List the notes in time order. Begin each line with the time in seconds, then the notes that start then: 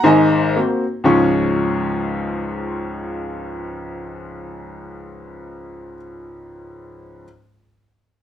0.04 G#1 G#2 D#5 G#5
0.56 A#3 C4 F#4
1.04 C#2 G#2 F3 G#3 C#4 F4 C#6